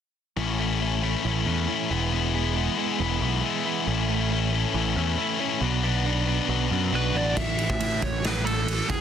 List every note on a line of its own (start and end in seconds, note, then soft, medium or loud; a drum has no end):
0.37 1.14 A1 medium
0.37 0.57 A2 medium
0.37 0.59 E3 medium
0.37 0.58 A3 medium
0.37 0.58 C#4 medium
0.37 0.60 E4 medium
0.59 0.80 A2 medium
0.59 0.81 E3 medium
0.59 0.80 A3 medium
0.59 0.81 C#4 medium
0.59 0.82 E4 medium
0.81 1.01 A2 medium
0.81 1.02 E3 medium
0.81 1.02 A3 medium
0.81 1.02 C#4 medium
0.81 1.03 E4 medium
1.02 1.23 A2 medium
1.02 1.25 E3 medium
1.02 1.24 A3 medium
1.02 1.24 C#4 loud
1.02 1.25 E4 loud
1.24 1.44 A1 medium
1.24 1.45 A2 medium
1.24 1.46 E3 medium
1.24 1.46 A3 medium
1.24 1.46 C#4 medium
1.24 1.47 E4 medium
1.46 1.66 E2 medium
1.46 1.67 A2 medium
1.46 1.68 E3 medium
1.46 1.67 A3 medium
1.46 1.68 C#4 medium
1.46 1.69 E4 medium
1.68 1.89 A2 medium
1.68 1.90 E3 medium
1.68 1.89 A3 medium
1.68 1.90 C#4 medium
1.68 1.90 E4 medium
1.90 2.68 E1 medium
1.90 2.11 E2 medium
1.90 2.12 E3 medium
1.90 2.11 G#3 medium
1.90 2.12 B3 medium
1.90 2.13 E4 loud
2.12 3.22 E2 medium
2.12 2.33 E3 medium
2.12 2.33 G#3 medium
2.12 2.33 B3 medium
2.12 2.34 E4 medium
2.33 2.55 E3 medium
2.33 2.55 G#3 medium
2.33 2.55 B3 medium
2.33 2.56 E4 medium
2.55 2.77 E3 medium
2.55 2.76 G#3 medium
2.55 2.77 B3 medium
2.55 2.78 E4 medium
2.77 2.98 E3 medium
2.77 2.98 G#3 medium
2.77 2.98 B3 medium
2.77 2.99 E4 loud
2.99 3.19 E1 medium
2.99 3.19 E3 medium
2.99 3.20 G#3 medium
2.99 3.20 B3 medium
2.99 3.20 E4 medium
3.21 3.41 B1 medium
3.21 3.41 E3 medium
3.21 3.42 G#3 medium
3.21 3.42 B3 medium
3.21 3.42 E4 medium
3.43 3.63 E3 medium
3.43 3.64 G#3 medium
3.43 3.64 B3 medium
3.43 3.65 E4 medium
3.64 3.85 E3 medium
3.64 3.86 G#3 medium
3.64 3.86 B3 medium
3.64 3.86 E4 medium
3.86 4.64 A1 medium
3.86 4.08 A2 medium
3.86 4.08 E3 medium
3.86 4.08 A3 medium
3.86 4.08 C#4 medium
3.86 4.09 E4 medium
4.09 4.29 A2 medium
4.09 4.30 E3 medium
4.09 4.30 A3 medium
4.09 4.31 C#4 medium
4.09 4.31 E4 medium
4.31 4.51 A2 medium
4.31 4.52 E3 medium
4.31 4.52 A3 medium
4.31 4.52 C#4 medium
4.31 4.53 E4 medium
4.52 4.73 A2 medium
4.52 4.73 E3 medium
4.52 4.74 A3 medium
4.52 4.74 C#4 loud
4.52 4.74 E4 loud
4.74 4.94 A1 medium
4.74 4.95 A2 medium
4.74 4.95 E3 medium
4.74 4.95 A3 medium
4.74 4.96 C#4 medium
4.74 4.96 E4 medium
4.96 5.16 E2 medium
4.96 5.16 A2 medium
4.96 5.17 E3 medium
4.96 5.17 A3 medium
4.96 5.18 C#4 medium
4.96 5.18 E4 medium
5.18 5.38 A2 medium
5.18 5.38 E3 medium
5.18 5.39 A3 medium
5.18 5.39 C#4 medium
5.18 5.39 E4 loud
5.39 5.60 A2 medium
5.39 5.61 E3 medium
5.39 5.61 A3 medium
5.39 5.61 C#4 medium
5.39 5.61 E4 medium
5.61 6.39 B1 medium
5.61 5.82 B2 medium
5.61 5.82 F#3 medium
5.61 5.83 B3 medium
5.61 5.83 D4 medium
5.61 5.83 F#4 medium
5.83 6.04 B2 medium
5.83 6.04 F#3 medium
5.83 6.04 B3 medium
5.83 6.04 D4 medium
5.83 6.05 F#4 medium
6.05 6.26 B2 medium
6.05 6.27 F#3 medium
6.05 6.27 B3 medium
6.05 6.27 D4 medium
6.05 6.28 F#4 medium
6.27 6.48 B2 medium
6.27 6.48 F#3 medium
6.27 6.49 B3 loud
6.27 6.49 D4 loud
6.27 6.49 F#4 loud
6.48 6.68 B1 medium
6.48 6.70 B2 medium
6.48 6.70 F#3 medium
6.48 6.71 B3 medium
6.48 6.71 D4 medium
6.48 6.71 F#4 medium
6.71 6.91 F#2 medium
6.71 6.92 B2 medium
6.71 6.92 F#3 medium
6.71 6.92 B3 medium
6.71 6.93 D4 medium
6.71 6.93 F#4 medium
6.93 7.13 B1 medium
6.93 7.13 B2 medium
6.93 7.13 F#3 medium
6.93 7.14 B3 medium
6.93 7.14 D4 medium
6.93 7.14 F#4 medium
6.93 7.17 B4 medium
7.14 7.34 A1 medium
7.14 7.35 B2 medium
7.14 7.35 F#3 medium
7.14 7.36 B3 medium
7.14 7.36 D4 medium
7.14 7.36 F#4 medium
7.14 7.37 D5 medium
7.36 7.66 A1 medium
7.36 7.57 A2 medium
7.36 7.57 E3 medium
7.36 7.57 A3 medium
7.36 7.69 E5 medium
7.36 kick medium
7.36 crash medium
7.58 7.78 A2 medium
7.58 7.78 E3 medium
7.58 ride medium
7.70 7.99 A2 medium
7.70 8.03 E5 medium
7.70 kick medium
7.80 8.00 A2 medium
7.80 8.00 E3 medium
7.80 ride medium
8.01 8.79 A1 medium
8.01 8.22 A2 medium
8.01 8.23 E3 medium
8.01 8.23 A3 loud
8.01 8.25 C#5 medium
8.01 kick medium
8.01 ride medium
8.23 8.43 A2 medium
8.23 8.44 E3 medium
8.23 8.45 B4 medium
8.23 snare loud
8.23 ride medium
8.44 8.65 A2 medium
8.44 8.65 E3 medium
8.44 8.66 A3 medium
8.44 8.90 A4 medium
8.44 ride medium
8.66 8.87 A2 medium
8.66 8.87 E3 medium
8.66 ride medium
8.88 9.01 E1 medium
8.88 9.01 E2 medium
8.88 9.01 B2 medium
8.88 9.01 E3 loud
8.88 9.01 G#4 medium
8.88 kick medium
8.88 ride medium